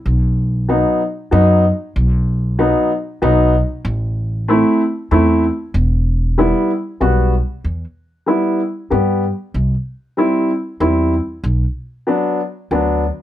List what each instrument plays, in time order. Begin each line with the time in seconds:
0.06 upright bass B1
0.69 upright piano F#3 B3 D#4
1.31 upright bass F#2, upright piano F#3 B3 D#4
1.96 upright bass B1
2.59 upright piano F#3 B3 D#4
3.22 upright bass B1, upright piano F#3 B3 D#4
3.85 upright bass A1
4.48 upright piano A3 C4 E4
5.11 upright bass E2, upright piano A3 C4 E4
5.74 upright bass E1
6.38 upright piano G3 B3 E4
7.00 upright bass B1, upright piano G3 B3 F#4
7.64 upright bass E2
8.26 upright piano G3 B3 E4
8.90 upright bass G2, upright piano G3 B3 G4
9.54 upright bass C2
10.17 upright piano G3 C4 E4
10.80 upright bass E2, upright piano G3 C4 E4
11.44 upright bass B1
12.07 upright piano F#3 B3 D4
12.71 upright bass D2, upright piano F#3 B3 D4